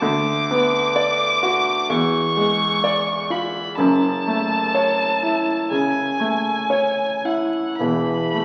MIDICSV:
0, 0, Header, 1, 3, 480
1, 0, Start_track
1, 0, Tempo, 940439
1, 9, Time_signature, 4, 2, 24, 8
1, 1929, Tempo, 967742
1, 2889, Tempo, 995025
1, 3369, Tempo, 1081081
1, 4141, End_track
2, 0, Start_track
2, 0, Title_t, "Violin"
2, 0, Program_c, 0, 40
2, 2, Note_on_c, 0, 86, 115
2, 970, Note_on_c, 0, 85, 103
2, 978, Note_off_c, 0, 86, 0
2, 1688, Note_on_c, 0, 83, 90
2, 1696, Note_off_c, 0, 85, 0
2, 1917, Note_on_c, 0, 81, 105
2, 1924, Note_off_c, 0, 83, 0
2, 2883, Note_off_c, 0, 81, 0
2, 2891, Note_on_c, 0, 80, 87
2, 3606, Note_on_c, 0, 78, 69
2, 3612, Note_off_c, 0, 80, 0
2, 3841, Note_off_c, 0, 78, 0
2, 3844, Note_on_c, 0, 83, 83
2, 4141, Note_off_c, 0, 83, 0
2, 4141, End_track
3, 0, Start_track
3, 0, Title_t, "Grand piano"
3, 0, Program_c, 1, 0
3, 0, Control_c, 1, 64, 127
3, 8, Note_on_c, 1, 38, 71
3, 17, Control_c, 1, 64, 0
3, 112, Control_c, 1, 64, 127
3, 259, Note_on_c, 1, 59, 53
3, 488, Note_on_c, 1, 74, 61
3, 637, Note_off_c, 1, 59, 0
3, 729, Note_on_c, 1, 66, 66
3, 870, Note_off_c, 1, 74, 0
3, 946, Note_off_c, 1, 38, 0
3, 967, Note_off_c, 1, 66, 0
3, 967, Note_on_c, 1, 40, 66
3, 974, Control_c, 1, 64, 0
3, 1062, Control_c, 1, 64, 127
3, 1207, Note_on_c, 1, 56, 56
3, 1448, Note_on_c, 1, 74, 63
3, 1591, Note_off_c, 1, 56, 0
3, 1685, Note_on_c, 1, 65, 51
3, 1833, Note_off_c, 1, 74, 0
3, 1909, Note_off_c, 1, 40, 0
3, 1927, Note_on_c, 1, 30, 63
3, 1929, Note_off_c, 1, 65, 0
3, 1935, Note_on_c, 1, 42, 65
3, 1938, Control_c, 1, 64, 0
3, 2019, Control_c, 1, 64, 127
3, 2173, Note_on_c, 1, 57, 48
3, 2408, Note_on_c, 1, 73, 54
3, 2556, Note_off_c, 1, 57, 0
3, 2646, Note_on_c, 1, 64, 50
3, 2791, Note_off_c, 1, 73, 0
3, 2868, Note_off_c, 1, 30, 0
3, 2872, Note_off_c, 1, 42, 0
3, 2886, Note_on_c, 1, 49, 49
3, 3030, Note_off_c, 1, 64, 0
3, 3123, Note_on_c, 1, 57, 49
3, 3269, Note_off_c, 1, 49, 0
3, 3364, Note_on_c, 1, 73, 50
3, 3508, Note_off_c, 1, 57, 0
3, 3607, Note_on_c, 1, 64, 48
3, 3753, Note_off_c, 1, 73, 0
3, 3850, Note_on_c, 1, 28, 54
3, 3853, Note_off_c, 1, 64, 0
3, 3856, Note_on_c, 1, 40, 54
3, 3860, Control_c, 1, 64, 0
3, 3950, Control_c, 1, 64, 127
3, 4093, Note_on_c, 1, 57, 40
3, 4141, Note_off_c, 1, 28, 0
3, 4141, Note_off_c, 1, 40, 0
3, 4141, Note_off_c, 1, 57, 0
3, 4141, End_track
0, 0, End_of_file